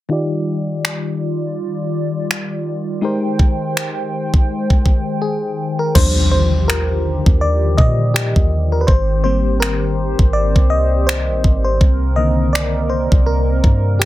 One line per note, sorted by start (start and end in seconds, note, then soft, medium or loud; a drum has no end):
0.09 2.98 D#3 medium
0.09 5.91 D#3 medium
0.09 3.00 G3 medium
0.09 2.99 D#4 medium
0.09 3.00 F4 medium
0.09 2.99 F4 medium
0.09 3.00 G4 medium
0.09 3.00 D5 medium
0.85 finger snap medium
2.31 finger snap loud
3.01 5.91 G#3 medium
3.01 5.92 G#3 medium
3.01 5.91 D#4 medium
3.01 5.92 G4 medium
3.01 5.78 A#4 medium
3.01 5.92 C5 medium
3.01 5.92 G5 medium
3.39 kick medium
3.77 finger snap medium
4.34 kick medium
4.70 kick medium
4.86 kick medium
5.22 5.82 G#4 medium
5.79 5.86 A#4 medium
5.95 7.23 D#2 loud
5.95 8.85 D3 medium
5.95 11.77 D#3 medium
5.95 6.46 F3 medium
5.95 6.47 G3 soft
5.95 6.47 D4 medium
5.95 8.85 F4 medium
5.95 8.86 G4 medium
5.95 6.30 C5 loud
5.95 kick loud
5.95 crash medium
5.95 impact medium
6.32 6.66 C5 medium
6.68 7.44 A#4 loud
6.68 finger snap loud
7.26 7.76 D#2 medium
7.26 kick medium
7.41 7.79 D5 loud
7.77 8.34 A#2 loud
7.77 8.12 D#5 loud
7.77 kick medium
8.14 8.74 G4 medium
8.14 finger snap loud
8.36 8.86 D#2 loud
8.36 kick medium
8.72 8.77 A#4 medium
8.81 8.88 B4 medium
8.87 10.15 G#1 loud
8.87 14.05 C4 medium
8.87 11.78 G4 medium
8.87 9.23 C5 loud
8.87 11.78 C5 medium
8.87 kick loud
9.24 10.30 G3 medium
9.24 10.31 A#3 medium
9.24 10.31 C4 medium
9.24 9.38 C5 loud
9.60 10.36 A#4 loud
9.60 finger snap loud
10.19 10.54 G#1 loud
10.19 kick medium
10.33 10.72 D5 loud
10.56 11.31 C2 loud
10.56 kick medium
10.70 11.08 D#5 loud
11.07 11.61 C5 medium
11.07 finger snap loud
11.29 11.44 A#1 medium
11.44 11.80 G#1 loud
11.44 kick medium
11.64 12.19 C5 medium
11.80 13.08 C2 loud
11.80 14.05 C3 medium
11.80 14.05 A#3 medium
11.80 14.05 A#4 medium
11.80 kick loud
12.16 14.05 D3 medium
12.16 14.05 D#3 medium
12.16 14.05 A#3 soft
12.16 12.51 D#5 medium
12.53 12.91 D5 medium
12.53 finger snap loud
12.90 13.04 C5 medium
13.12 13.62 C2 loud
13.12 kick medium
13.26 13.96 A#4 medium
13.64 14.05 G2 loud
13.64 kick medium
13.99 14.05 G4 medium
13.99 finger snap loud